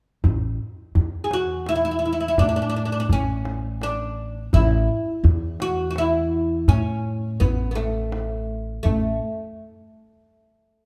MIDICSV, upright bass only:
0, 0, Header, 1, 2, 480
1, 0, Start_track
1, 0, Tempo, 716846
1, 161, Time_signature, 3, 2, 24, 8
1, 7267, End_track
2, 0, Start_track
2, 0, Title_t, "Upright bass"
2, 0, Program_c, 0, 32
2, 164, Note_on_c, 0, 33, 79
2, 383, Note_off_c, 0, 33, 0
2, 639, Note_on_c, 0, 40, 77
2, 1571, Note_off_c, 0, 40, 0
2, 1594, Note_on_c, 0, 45, 75
2, 2049, Note_off_c, 0, 45, 0
2, 2077, Note_on_c, 0, 33, 79
2, 3011, Note_off_c, 0, 33, 0
2, 3037, Note_on_c, 0, 33, 91
2, 3258, Note_off_c, 0, 33, 0
2, 3506, Note_on_c, 0, 40, 87
2, 4448, Note_off_c, 0, 40, 0
2, 4471, Note_on_c, 0, 45, 72
2, 4930, Note_off_c, 0, 45, 0
2, 4957, Note_on_c, 0, 33, 75
2, 5895, Note_off_c, 0, 33, 0
2, 5927, Note_on_c, 0, 33, 74
2, 6149, Note_off_c, 0, 33, 0
2, 7267, End_track
0, 0, End_of_file